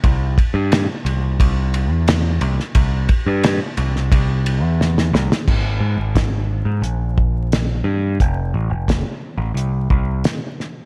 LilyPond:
<<
  \new Staff \with { instrumentName = "Picked electric bass" } { \clef bass \time 4/4 \key f \lydian \tempo 4 = 88 c,8 r16 g,8 r16 c,8 c,8. e,8. c,16 r16 | c,8 r16 g,8 r16 c,8 c,8. e,8. c,16 r16 | aes,,8 aes,16 aes,,4 aes,16 bes,,4. g,8 | f,,8 a,,16 f,,8 r8 a,,16 c,8 c,8 r4 | }
  \new DrumStaff \with { instrumentName = "Drums" } \drummode { \time 4/4 <bd cymr>8 <bd cymr>8 <cymr sn>8 cymr8 <bd cymr>8 cymr8 <cymr sn>8 cymr16 sn16 | <bd cymr>8 <bd cymr>8 <cymr sn>8 cymr16 sn16 <bd cymr>8 cymr8 sn16 sn16 sn16 sn16 | <cymc bd>4 <hh bd sn>4 hh8 bd8 <hh sn>4 | <hh bd>4 <hh bd sn>4 hh8 bd8 <hh sn>8 sn8 | }
>>